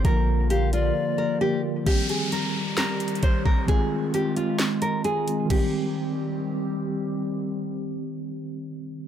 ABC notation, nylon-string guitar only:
X:1
M:4/4
L:1/8
Q:1/4=132
K:Cm
V:1 name="Nylon-string guitar"
B2 G F z B G z | G A B2 B2 c B | A2 G F z B A2 | G6 z2 |
z8 |]